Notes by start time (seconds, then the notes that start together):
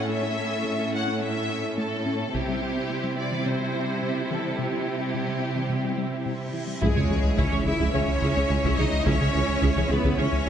Already playing: A2 A3 C#4 E4 A4 C#5 F#5
0.09 A3 E5
0.23 E4
0.37 A4
0.50 A4
0.65 A3
0.79 E4
0.95 F#5
1.07 C#4
1.22 A3 E5
1.36 E4
1.49 E4
1.78 A3 A4
2.06 C#4
2.20 E4
2.34 C3 G3 C4 E4 G4 E5, taiko
2.48 G3
2.62 C4
2.76 C4
2.90 C3
3.04 G3
3.19 D5
3.31 E3
3.46 C3 C5
3.60 G3
3.75 G3
4.03 C3
4.31 E3 A4
4.44 G3
4.58 C3 G4, reverse cymbal
4.72 G3
4.87 C4
5.00 C4
5.14 C3
5.28 G3
5.56 E3
5.69 C3
5.84 G3
5.98 G3
6.26 C3
6.54 E3
6.67 G3
6.81 C#2 C#3 G#3 C#4 E4 G#4 C#5 E5, taiko, sub drop
6.95 C#2 C#3 G#3 G#4 C#5
7.09 C#2 E3 G#4
7.24 C#2
7.37 C#2 C#3 C#4 E4 G#4 C#5, taiko
7.52 C#2 E3 G#4 C#5
7.65 C#2 C#4 E4 G#4 E5
7.80 C#2 C#3 E4 G#4, taiko
7.93 C#2 E3 C#4 G#4 C#5 E5
8.08 C#2
8.21 C#2 C#3 E4 G#4
8.35 C#2 C#4 G#4 C#5
8.49 C#2 C#4 G#4
8.63 C#2 C#3 E4 G#4, taiko
8.78 C#2 E3 D#4 G#4 C#5 D#5
8.93 C#2
9.05 C#2 C#3 C#4 E4 G#4 C#5 E5, taiko
9.20 C#2 C#3 G#3 G#4 C#5
9.35 C#2 E3 G#4
9.49 C#2
9.62 C#2 C#3 E4 G#4, taiko
9.76 C#2 E3 G#4 C#5
9.89 C#2 B3 C#4 G#4 B4
10.03 C#2 C#3 E4 G#4, taiko
10.18 C#2 E3 C#4 G#4 C#5 E5
10.33 C#2